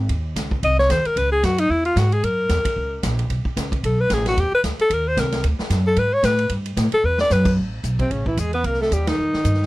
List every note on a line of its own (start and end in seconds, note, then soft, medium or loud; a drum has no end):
0.09 0.35 D#2 medium
0.09 kick soft
0.09 ride medium
0.36 0.62 C#2 medium
0.36 kick soft
0.36 snare medium
0.36 hi-hat pedal medium
0.36 ride medium
0.51 kick medium
0.63 0.89 C2 medium
0.63 0.78 D#5 loud
0.63 kick soft
0.63 ride medium
0.79 0.93 C#5 loud
0.79 snare soft
0.89 1.04 D#2 loud
0.89 1.08 C5 medium
0.89 kick soft
0.89 snare medium
0.89 hi-hat pedal medium
0.89 ride medium
1.05 1.19 A#4 loud
1.05 muted upright bass stroke soft
1.05 ride medium
1.16 1.42 C#2 medium
1.16 1.31 B4 loud
1.16 kick soft
1.16 ride medium
1.32 1.46 G#4 loud
1.43 1.69 F#2 loud
1.43 1.61 F#4 medium
1.43 kick soft
1.43 snare medium
1.43 hi-hat pedal medium
1.43 ride medium
1.58 1.72 D#4 loud
1.58 ride medium
1.69 1.95 E2 loud
1.69 1.85 E4 medium
1.69 kick soft
1.85 2.00 F4 medium
1.85 ride soft
1.96 2.22 G#2 loud
1.96 2.14 F#4 medium
1.96 kick soft
1.96 snare medium
1.96 hi-hat pedal medium
1.96 ride medium
2.12 2.25 G#4 medium
2.12 ride medium
2.23 2.49 F#2 medium
2.23 3.04 A#4 medium
2.23 kick soft
2.23 ride medium
2.49 2.64 E2 medium
2.49 kick soft
2.49 snare medium
2.49 hi-hat pedal medium
2.49 ride medium
2.65 kick medium
2.65 ride medium
2.76 3.03 C#2 medium
2.76 kick soft
3.03 3.29 A#1 loud
3.03 kick soft
3.03 snare medium
3.03 hi-hat pedal medium
3.03 ride medium
3.19 ride medium
3.29 3.44 B1 medium
3.29 kick soft
3.29 ride medium
3.45 muted upright bass stroke soft
3.45 kick medium
3.57 3.83 C#2 medium
3.57 kick soft
3.57 snare medium
3.57 hi-hat pedal medium
3.57 ride medium
3.72 kick medium
3.72 ride medium
3.83 4.09 B1 medium
3.83 4.02 A4 medium
3.83 kick soft
3.83 ride medium
4.01 4.15 B4 loud
4.10 4.36 A1 loud
4.10 4.27 G#4 medium
4.10 kick soft
4.10 snare medium
4.10 hi-hat pedal medium
4.10 ride medium
4.25 4.42 F#4 loud
4.25 snare medium
4.25 ride medium
4.37 4.51 E2 medium
4.37 4.54 G4 medium
4.37 kick soft
4.37 ride medium
4.52 4.61 B4 loud
4.52 muted upright bass stroke soft
4.63 4.78 D2 medium
4.63 kick soft
4.63 snare medium
4.63 hi-hat pedal medium
4.63 ride medium
4.79 4.95 A4 loud
4.79 muted upright bass stroke soft
4.79 ride medium
4.90 5.16 D#2 medium
4.90 5.10 A#4 loud
4.90 kick soft
4.90 ride medium
5.08 5.21 C5 loud
5.17 5.43 C2 loud
5.17 5.45 A#4 medium
5.17 kick soft
5.17 snare medium
5.17 hi-hat pedal medium
5.17 ride medium
5.32 snare medium
5.32 ride medium
5.44 5.58 D2 medium
5.44 kick soft
5.44 ride medium
5.59 snare medium
5.70 5.96 F#2 loud
5.70 kick soft
5.70 snare medium
5.70 hi-hat pedal medium
5.70 ride medium
5.87 6.00 A4 loud
5.96 6.22 G#2 medium
5.96 6.15 B4 loud
5.96 kick soft
5.96 ride medium
6.13 6.27 C#5 loud
6.23 6.49 A2 loud
6.23 6.51 B4 loud
6.23 kick soft
6.23 snare medium
6.23 hi-hat pedal medium
6.23 ride medium
6.39 ride medium
6.49 6.76 G2 medium
6.49 kick soft
6.49 ride medium
6.66 ride medium
6.77 6.91 A2 loud
6.77 kick soft
6.77 snare medium
6.77 hi-hat pedal medium
6.77 ride medium
6.92 7.07 A4 loud
6.92 muted upright bass stroke soft
6.92 ride medium
7.03 7.30 E2 medium
7.03 7.20 B4 loud
7.18 7.34 D5 loud
7.18 snare medium
7.30 7.56 F#2 loud
7.30 7.53 B4 loud
7.30 snare medium
7.30 hi-hat pedal medium
7.45 kick medium
7.45 crash medium
7.57 7.83 A1 medium
7.57 kick soft
7.84 8.10 B1 medium
7.84 kick soft
7.84 hi-hat pedal medium
7.84 ride medium
7.99 8.14 C3 medium
7.99 8.13 C4 medium
7.99 kick medium
7.99 ride soft
8.10 8.37 A1 medium
8.10 8.27 C#3 medium
8.10 8.26 C#4 medium
8.10 kick soft
8.10 ride medium
8.26 8.41 E3 medium
8.26 8.41 E4 medium
8.26 kick medium
8.37 8.63 E2 medium
8.37 8.54 G#3 medium
8.37 8.53 G#4 medium
8.37 kick soft
8.37 hi-hat pedal medium
8.37 ride medium
8.53 8.67 B3 medium
8.53 8.67 B4 medium
8.53 ride soft
8.64 8.90 C2 medium
8.64 8.80 A#3 medium
8.64 8.80 A#4 medium
8.64 kick soft
8.64 ride medium
8.74 snare soft
8.81 8.94 A3 medium
8.81 8.95 A4 medium
8.81 snare soft
8.91 9.17 D#2 medium
8.91 9.10 G3 medium
8.91 9.09 G4 medium
8.91 kick soft
8.91 hi-hat pedal medium
8.91 ride medium
9.07 9.66 D#3 medium
9.07 9.66 D#4 medium
9.07 snare medium
9.07 ride medium
9.18 9.32 F2 medium
9.33 muted upright bass stroke soft
9.33 snare medium
9.44 9.66 G2 loud
9.44 kick soft
9.44 hi-hat pedal medium
9.44 ride medium
9.54 snare soft
9.62 snare soft